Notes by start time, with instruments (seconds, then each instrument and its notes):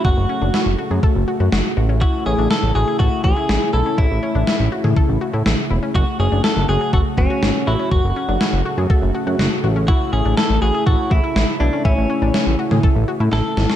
Already playing: analog synth pad C#3 A3 F#4
0.05 analog synth bass F#1, synth arpeggio sound F#4, clean electric guitar F#4, kick
0.17 analog synth bass F#1
0.29 synth arpeggio sound C#4
0.41 analog synth bass F#1, synth arpeggio sound D4
0.54 synth arpeggio sound E4, snare
0.66 analog synth bass F#1
0.78 synth arpeggio sound F#4
0.91 analog synth bass F#2, synth arpeggio sound G#4
1.03 synth arpeggio sound A4, kick
1.16 analog synth bass F#1
1.28 synth arpeggio sound F#4
1.40 analog synth bass F#2, synth arpeggio sound F#4
1.52 analog synth bass F#1, synth arpeggio sound F#4, snare
1.77 analog synth bass A1, analog synth pad E4, synth arpeggio sound F#4
1.89 synth arpeggio sound C#4
2.01 synth arpeggio sound E4, clean electric guitar F#4, kick
2.26 analog synth bass A1, synth arpeggio sound C#4, clean electric guitar G#4
2.38 analog synth bass A1, synth arpeggio sound D4
2.51 synth arpeggio sound E4, clean electric guitar A4, snare
2.63 analog synth bass A1
2.75 analog synth bass A1, synth arpeggio sound F#4, clean electric guitar G#4
2.88 synth arpeggio sound G#4
2.99 analog synth bass A1, clean electric guitar F#4, synth arpeggio sound A4, kick
3.24 analog synth bass A1, synth arpeggio sound F#4, clean electric guitar G#4, kick
3.37 synth arpeggio sound E4
3.49 analog synth bass A1, synth arpeggio sound E4, snare
3.73 analog synth bass B1, synth arpeggio sound E4, clean electric guitar A4
3.86 synth arpeggio sound C#4
3.98 analog synth bass A1, clean electric guitar E4, synth arpeggio sound E4, kick
4.11 analog synth bass A1
4.23 synth arpeggio sound C#4
4.35 analog synth bass A1, synth arpeggio sound D4
4.47 synth arpeggio sound E4, snare
4.60 analog synth bass A1
4.72 synth arpeggio sound F#4
4.84 analog synth bass A2, synth arpeggio sound G#4, mid tom
4.97 synth arpeggio sound A4, kick
5.09 analog synth bass A1
5.21 synth arpeggio sound F#4
5.33 analog synth bass A2, synth arpeggio sound E4
5.46 analog synth bass A1, synth arpeggio sound E4, snare
5.70 analog synth bass E1, synth arpeggio sound E4
5.83 synth arpeggio sound C#4
5.95 analog synth bass F#1, analog synth pad A3 F#4, synth arpeggio sound F#4, clean electric guitar F#4, kick
6.20 analog synth bass F#1, synth arpeggio sound C#4, clean electric guitar G#4
6.32 analog synth bass F#1, synth arpeggio sound D4
6.44 synth arpeggio sound E4, clean electric guitar A4, snare
6.56 analog synth bass F#1
6.69 analog synth bass F#1, synth arpeggio sound F#4, clean electric guitar G#4
6.81 synth arpeggio sound G#4
6.93 analog synth bass F#1, clean electric guitar F#4, synth arpeggio sound A4, kick
7.18 analog synth bass F#1, clean electric guitar C#4, synth arpeggio sound F#4, kick
7.30 synth arpeggio sound F#4
7.42 analog synth bass G#1, synth arpeggio sound F#4, snare
7.67 analog synth bass A1, clean electric guitar E4, synth arpeggio sound F#4
7.79 synth arpeggio sound C#4
7.91 analog synth bass F#1, clean electric guitar F#4, synth arpeggio sound F#4, kick
8.04 analog synth bass F#1
8.16 synth arpeggio sound C#4
8.28 analog synth bass F#1, synth arpeggio sound D4
8.41 synth arpeggio sound E4, snare
8.53 analog synth bass F#1
8.65 synth arpeggio sound F#4
8.78 analog synth bass F#2, synth arpeggio sound G#4
8.90 synth arpeggio sound A4, kick
9.02 analog synth bass F#1
9.15 synth arpeggio sound F#4
9.27 analog synth bass F#2, synth arpeggio sound F#4
9.39 analog synth bass F#1, synth arpeggio sound F#4, snare
9.64 analog synth bass A1, analog synth pad E4, synth arpeggio sound F#4
9.76 synth arpeggio sound C#4
9.88 synth arpeggio sound E4, clean electric guitar F#4, kick
10.13 analog synth bass A1, synth arpeggio sound C#4, clean electric guitar G#4
10.25 analog synth bass A1, synth arpeggio sound D4
10.37 synth arpeggio sound E4, clean electric guitar A4, snare
10.50 analog synth bass A1
10.62 analog synth bass A1, synth arpeggio sound F#4, clean electric guitar G#4
10.74 synth arpeggio sound G#4
10.86 analog synth bass A1, clean electric guitar F#4, synth arpeggio sound A4, kick
11.11 analog synth bass A1, clean electric guitar E4, synth arpeggio sound F#4, kick
11.24 synth arpeggio sound E4
11.36 analog synth bass A1, synth arpeggio sound E4, snare
11.60 analog synth bass B1, clean electric guitar D4, synth arpeggio sound E4
11.73 synth arpeggio sound C#4
11.85 analog synth bass A1, clean electric guitar C#4, synth arpeggio sound E4, kick
11.97 analog synth bass A1
12.10 synth arpeggio sound C#4
12.22 analog synth bass A1, synth arpeggio sound D4
12.34 synth arpeggio sound E4, snare
12.47 analog synth bass A1
12.59 synth arpeggio sound F#4
12.71 analog synth bass A2, synth arpeggio sound G#4, mid tom
12.83 synth arpeggio sound A4, kick
12.96 analog synth bass A1
13.08 synth arpeggio sound F#4
13.20 analog synth bass A2, synth arpeggio sound E4
13.32 analog synth bass A1, synth arpeggio sound E4, clean electric guitar A4, snare
13.57 analog synth bass G#1, synth arpeggio sound E4, snare
13.69 synth arpeggio sound C#4, snare